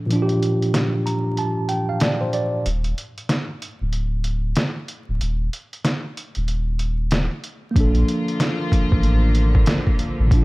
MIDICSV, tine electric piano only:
0, 0, Header, 1, 2, 480
1, 0, Start_track
1, 0, Key_signature, -2, "major"
1, 0, Tempo, 638298
1, 74, Time_signature, 4, 2, 24, 8
1, 7854, End_track
2, 0, Start_track
2, 0, Title_t, "Tine electric piano"
2, 0, Program_c, 0, 4
2, 0, Control_c, 0, 64, 127
2, 46, Note_on_c, 0, 46, 77
2, 70, Note_on_c, 0, 53, 68
2, 93, Note_on_c, 0, 62, 70
2, 117, Note_on_c, 0, 65, 70
2, 156, Note_off_c, 0, 65, 0
2, 166, Note_on_c, 0, 67, 93
2, 794, Note_on_c, 0, 82, 70
2, 1017, Note_off_c, 0, 82, 0
2, 1041, Note_on_c, 0, 81, 74
2, 1261, Note_off_c, 0, 81, 0
2, 1268, Note_on_c, 0, 79, 75
2, 1408, Note_off_c, 0, 79, 0
2, 1420, Note_on_c, 0, 77, 74
2, 1507, Note_off_c, 0, 77, 0
2, 1522, Note_on_c, 0, 74, 76
2, 1656, Note_off_c, 0, 74, 0
2, 1660, Note_on_c, 0, 72, 68
2, 1747, Note_off_c, 0, 72, 0
2, 1758, Note_on_c, 0, 74, 77
2, 1950, Note_off_c, 0, 46, 0
2, 1962, Note_off_c, 0, 53, 0
2, 1974, Note_off_c, 0, 62, 0
2, 1980, Note_off_c, 0, 74, 0
2, 2005, Control_c, 0, 64, 0
2, 2010, Note_off_c, 0, 67, 0
2, 2122, Control_c, 0, 64, 127
2, 5799, Note_on_c, 0, 58, 59
2, 5822, Note_on_c, 0, 53, 60
2, 5843, Control_c, 0, 64, 0
2, 5846, Note_on_c, 0, 62, 61
2, 5870, Note_on_c, 0, 69, 71
2, 5952, Control_c, 0, 64, 127
2, 7706, Note_off_c, 0, 58, 0
2, 7718, Note_off_c, 0, 53, 0
2, 7726, Note_on_c, 0, 46, 76
2, 7730, Note_off_c, 0, 62, 0
2, 7742, Note_off_c, 0, 69, 0
2, 7750, Note_on_c, 0, 53, 69
2, 7773, Note_on_c, 0, 62, 69
2, 7797, Note_on_c, 0, 65, 72
2, 7836, Note_off_c, 0, 65, 0
2, 7854, Note_off_c, 0, 46, 0
2, 7854, Note_off_c, 0, 53, 0
2, 7854, Note_off_c, 0, 62, 0
2, 7854, End_track
0, 0, End_of_file